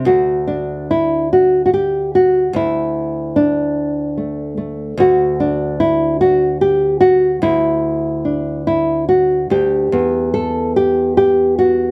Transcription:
0.05 D2 F#4
0.47 D4
0.91 E4
1.33 F#4
1.66 F#4
1.74 G4
2.15 F#4
2.53 D2 E4
3.36 D4
4.17 A3
4.57 A3
4.97 D2 F#4
5.40 D4
5.80 E4
6.21 F#4
6.61 G4
7.01 F#4
7.42 D2 E4
8.25 D4
8.67 E4
9.09 F#4
9.50 D2 G4
9.92 E2 B3
10.34 A4
10.76 G4
11.17 G4
11.59 F#4

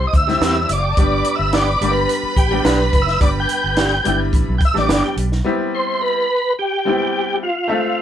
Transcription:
Already playing: C5 C6
0.07 D#5
0.14 D2 E5, kick, closed hi-hat
0.27 G3 C4 E4 G4, snare
0.41 E2 C4 E4 G4, snare, closed hi-hat
0.49 B3 B4
0.56 C4 C5
0.63 D4 D5
0.69 F#1 E4 D5 E5, closed hi-hat
0.77 F4 F5
0.83 G4 G5
0.90 A4 A5
0.97 G1 G3 B3 D4 G4 B4 D5 B5, kick, closed hi-hat
1.25 closed hi-hat
1.35 E5
1.39 G1
1.53 B3 D4 G4 D5, snare, closed hi-hat
1.81 G1 G3 A#3 D4 G4, closed hi-hat
1.88 B3 B4
2.09 closed hi-hat
2.23 muted fingered electric bass stroke
2.37 A1 G4, kick, closed hi-hat
2.50 G3 B3 D4 G4
2.64 B1 B3 D4 G4 B4, snare, closed hi-hat
2.93 F#1, kick, closed hi-hat
3.02 E5
3.07 snare
3.20 G1 G3 B3 D4 G4 D5, kick, closed hi-hat
3.40 G5
3.49 closed hi-hat
3.64 G1
3.77 B3 D4 G4, snare, closed hi-hat
4.04 G1 G3 B3 D4 E4, closed hi-hat
4.33 A1, kick, closed hi-hat
4.49 B1
4.58 G5, kick, closed hi-hat
4.65 E5
4.74 A1 G3 A3 D4 G4, snare
4.78 B3 D5
4.89 G1 B3 D4 G4, snare, closed hi-hat
5.04 G4
5.17 B1, closed hi-hat
5.32 snare
5.44 G3 B3 C4 E4 G4
5.75 C5
6.01 B4
6.59 G4
6.85 G3 B3 C4 E4 G4
7.43 F4
7.68 A3 C4 F4 A4 E5

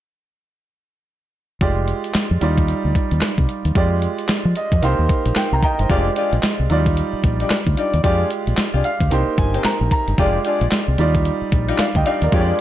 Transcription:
1.61 F1 G#3 F4 G4 D5, kick, closed hi-hat
1.88 closed hi-hat
2.04 closed hi-hat
2.14 muted fingered electric bass stroke, snare, clap, closed hi-hat
2.31 F2
2.41 D#2 G3 D#4 F4 D5, closed hi-hat
2.58 kick, closed hi-hat
2.68 closed hi-hat
2.85 D2
2.95 kick, closed hi-hat
3.11 D#2, closed hi-hat
3.21 muted fingered electric bass stroke, snare, clap, closed hi-hat
3.38 C2, kick
3.49 closed hi-hat
3.65 D#2, closed hi-hat
3.75 F2 G#3 F4 G4 D5, kick, closed hi-hat
4.02 closed hi-hat
4.18 closed hi-hat
4.28 muted fingered electric bass stroke, snare, clap, closed hi-hat
4.45 F3
4.56 D#5, closed hi-hat
4.72 F2, kick, closed hi-hat
4.82 C2 A#3 D#4 G4 C5 F5, closed hi-hat
4.99 D#2
5.09 kick, closed hi-hat
5.26 A#1, closed hi-hat
5.35 G5, muted fingered electric bass stroke, snare, clap, closed hi-hat
5.53 C2 G5 A#5
5.63 D#5 G5 A#5, kick, closed hi-hat
5.79 G1 C5 D#5, closed hi-hat
5.89 F1 G#3 D4 F4 G4 G#4 D5, kick, closed hi-hat
6.16 D4 F4 G4 G#4 D5, closed hi-hat
6.33 A#1, closed hi-hat
6.43 snare, clap, closed hi-hat
6.60 C2
6.70 D#2 F#3 D#4 F4 D5, closed hi-hat
6.76 G3
6.86 kick, closed hi-hat
6.97 closed hi-hat
7.13 muted fingered electric bass stroke
7.24 A#1, kick, closed hi-hat
7.40 D4 D#4 F4 G4 D5, closed hi-hat
7.50 muted fingered electric bass stroke, snare, clap, closed hi-hat
7.67 D2, kick
7.77 D4 D#4 F4 G4 D5, closed hi-hat
7.94 D#2, closed hi-hat
8.03 F2 G#3 D4 F4 G4 G#4 D5, kick, closed hi-hat
8.30 closed hi-hat
8.47 A#1, closed hi-hat
8.57 snare, clap, closed hi-hat
8.73 C2 D4 F4 G4 G#4 D5
8.84 F5, closed hi-hat
9.01 D2, kick, closed hi-hat
9.11 C2 A#3 D#4 G4 C5 G5, closed hi-hat
9.38 G1 G#5, kick, closed hi-hat
9.54 C4 D#4 G4 A#4 C5, closed hi-hat
9.64 A#5, muted fingered electric bass stroke, snare, clap, closed hi-hat
9.81 A#1
9.91 A#5, kick, closed hi-hat
10.08 G1, closed hi-hat
10.18 F1 G#3 D4 F4 G4 G#4 D5, kick, closed hi-hat
10.45 D4 F4 G4 G#4 D5, closed hi-hat
10.61 A#1, closed hi-hat
10.71 muted fingered electric bass stroke, snare, clap, closed hi-hat
10.88 C2
10.98 D#2 G3 D#4 F4 D5, closed hi-hat
11.15 kick, closed hi-hat
11.25 closed hi-hat
11.42 muted fingered electric bass stroke
11.52 A#1, kick, closed hi-hat
11.68 D4 D#4 F4 G4 D5, closed hi-hat
11.78 D5 F5, muted fingered electric bass stroke, snare, clap, closed hi-hat
11.95 D2 D#5 G5, kick
12.05 D4 D#4 F4 G4 D5 F5, closed hi-hat
12.22 D#2 A#4 D5, closed hi-hat
12.32 F2 G#3 D4 F4 G4 G#4 C#5 D5, kick, closed hi-hat
12.41 D5

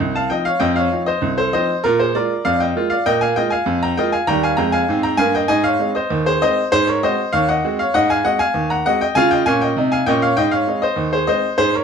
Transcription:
Already playing: D#5 G5
0.00 C2
0.15 F5 A5
0.30 F3 C4 D#4 D#5 G5
0.45 C#5 F5
0.60 F2 D#5 G5
0.76 C#5 F5
0.92 F3 C4 D#4
1.06 C5 D#5
1.22 C2
1.38 A4 C5
1.53 F3 C4 D#4 C5 D#5
1.84 A#2 F4 A#4
1.99 G#4 C5
2.15 G#3 A#3 F4 A#4 D5
2.45 F2 D5 F5
2.60 D#5 G5
2.76 G#3 A#3 F4
2.90 D5 F5
3.06 A#2 D#5 G5
3.21 F5 G#5
3.36 G#3 A#3 F4 D#5 G5
3.50 F5 G#5
3.66 F2
3.83 G5 A#5
3.97 G#3 A#3 F4 D#5 G5
4.12 F5 G#5
4.27 D#2 G3 G5 A#5
4.43 F5 G#5
4.57 F2 G#3 G5 A#5
4.72 F5 G#5
4.89 G#2 C4
5.03 G5 A#5
5.17 G2 A#3 F5 G#5
5.35 D#5 G5
5.48 G#2 D#5 G#5
5.64 C#5 F5
5.80 G#3 C4 D#4
5.95 C5 D#5
6.10 D#2
6.26 G#4 C5
6.42 G#3 C4 D#4 C5 D#5
6.72 G#2 G#4 C5
6.87 A#4 C#5
7.03 G#3 C4 F#4 C5 D#5
7.33 D#2 C#5 F5
7.49 D#5 F#5
7.65 G#3 C4 F#4
7.79 C#5 F5
7.94 G#2 D#5 F#5
8.10 F5 G#5
8.25 G#3 C4 F#4 D#5 F#5
8.39 F5 G#5
8.54 D#2
8.70 F#5 A#5
8.86 G#3 C4 F#4 D#5 F#5
9.01 D#5 G5
9.15 C#3 F4 F5 G#5
9.31 D#5 G5
9.46 A#2 C#4 F5 G#5
9.61 D#5 G5
9.77 C3 D#4
9.92 F5 G#5
10.06 A#2 C#4 D#5 G5
10.22 C#5 F5
10.37 G#2 D#5 G5
10.51 C#5 F5
10.67 G#3 C4 D#4
10.82 C5 D#5
10.96 D#2
11.13 G#4 C5
11.27 G#3 C4 D#4 C5 D#5
11.58 G#2 G#4 C5
11.74 A#4 C#5

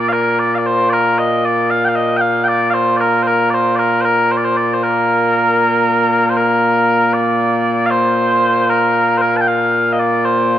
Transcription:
Already playing: A#2 A#3
0.09 F5
0.13 A#4
0.39 D5
0.55 D5 F5
0.66 C5
0.89 A#4 D5
1.18 D#5
1.45 D5
1.70 F5
1.85 F5 G5
1.96 D#5
2.17 G5
2.21 F5
2.44 G5
2.48 D5
2.70 C5 F5
2.97 A#4 D5
3.23 C5
3.27 A#4
3.50 C5 D5
3.75 A#4 D5
4.01 A#4 C5
4.32 C5
4.37 D5
4.44 C5
4.57 D5
4.73 C5
4.83 A#4
6.30 C5
6.37 A#4
7.13 D5
7.86 F5
7.90 C5
8.70 A#4
9.18 A#4 C5
9.37 A5
9.41 G5
9.48 F5
9.93 D#5
9.99 D5
10.25 C5

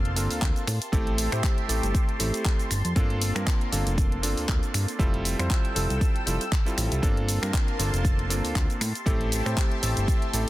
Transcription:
Already playing: F1 A#3 C4 D4 F4 A4 F5 A5 C6
0.05 closed hi-hat
0.16 G1 A#3 C4 D4 F4 A4, open hi-hat, shaker
0.31 D2, open hi-hat, shaker
0.42 D2, kick, clap, closed hi-hat, shaker
0.56 closed hi-hat, shaker
0.67 A2 G4 E5 C6, finger snap, open hi-hat, shaker
0.82 closed hi-hat, shaker
0.92 A1 A3 C4 E4 G4 A4, kick, closed hi-hat, shaker
1.07 closed hi-hat
1.18 open hi-hat, shaker
1.32 A2 A3 C4 E4 G4 C5, finger snap, closed hi-hat, shaker
1.44 kick, clap, closed hi-hat, shaker
1.58 closed hi-hat
1.68 A1 A3 C4 E4 G4 A4, open hi-hat, shaker
1.83 G1, closed hi-hat, shaker
1.95 kick, closed hi-hat, shaker
2.09 closed hi-hat
2.19 A1 A3 C4 E4 G4 A4, open hi-hat, shaker
2.34 closed hi-hat, shaker
2.45 kick, clap, closed hi-hat, shaker
2.59 closed hi-hat, shaker
2.71 G1 A#3, finger snap, open hi-hat, shaker
2.85 F2, closed hi-hat, shaker
2.96 G1 A#3 C4 D4 F4 A4, kick, closed hi-hat, shaker
3.10 closed hi-hat
3.22 open hi-hat, shaker
3.35 G2 A#3 C4 D4 F4 A#4, finger snap, closed hi-hat, shaker
3.47 kick, clap, closed hi-hat, shaker
3.61 closed hi-hat
3.72 G1 A#3 C4 D4 F4 A4, open hi-hat, shaker
3.86 F1, closed hi-hat, shaker
3.98 kick, closed hi-hat, shaker
4.12 closed hi-hat
4.22 G1 A#3 C4 D4 F4 A4, open hi-hat, shaker
4.37 D2, open hi-hat, shaker
4.49 D2, kick, clap, closed hi-hat, shaker
4.63 closed hi-hat, shaker
4.74 G2, finger snap, open hi-hat, shaker
4.88 closed hi-hat, shaker
4.99 F1 G3 C4 E4 F4 A4 G5 E6, kick, closed hi-hat, shaker
5.14 closed hi-hat
5.25 open hi-hat, shaker
5.39 F2 G3 C4 E4 F4 C5, finger snap, closed hi-hat, shaker
5.50 kick, clap, closed hi-hat, shaker
5.65 closed hi-hat
5.75 F1 G3 C4 E4 F4 A4, open hi-hat, shaker
5.90 C2, closed hi-hat, shaker
6.01 kick, closed hi-hat, shaker
6.16 closed hi-hat
6.26 F1 G3 C4 E4 F4 A4, open hi-hat, shaker
6.41 closed hi-hat, shaker
6.52 kick, clap, closed hi-hat, shaker
6.65 G3 C4 E4 F4 A4, closed hi-hat, shaker
6.78 A1, finger snap, open hi-hat, shaker
6.92 C2, closed hi-hat, shaker
7.02 G1 A#3 C4 D4 F4 A4 A5 C6, kick, closed hi-hat, shaker
7.17 closed hi-hat
7.29 open hi-hat, shaker
7.42 G2 A#3 C4 D4 F4 A#4, finger snap, closed hi-hat, shaker
7.54 kick, clap, closed hi-hat, shaker
7.68 closed hi-hat
7.79 G1 A#3 C4 D4 F4 A4, open hi-hat, shaker
7.93 F1, closed hi-hat, shaker
8.05 kick, closed hi-hat, shaker
8.19 closed hi-hat
8.30 G1 A#3 C4 D4 F4 A4, open hi-hat, shaker
8.44 D2, open hi-hat, shaker
8.56 D2, kick, clap, closed hi-hat, shaker
8.70 closed hi-hat, shaker
8.81 A2 G4 E5 A5 C6, finger snap, open hi-hat, shaker
8.95 closed hi-hat, shaker
9.06 A1 A3 C4 E4 G4 A4, kick, closed hi-hat, shaker
9.21 closed hi-hat
9.32 open hi-hat, shaker
9.45 A2 A3 C4 E4 G4 C5, finger snap, closed hi-hat, shaker
9.57 kick, clap, closed hi-hat, shaker
9.72 closed hi-hat
9.82 A1 A3 C4 E4 G4 A4, open hi-hat, shaker
9.97 G1, closed hi-hat, shaker
10.08 kick, closed hi-hat, shaker
10.22 closed hi-hat
10.33 A1 A3 C4 E4 G4 A4, open hi-hat, shaker

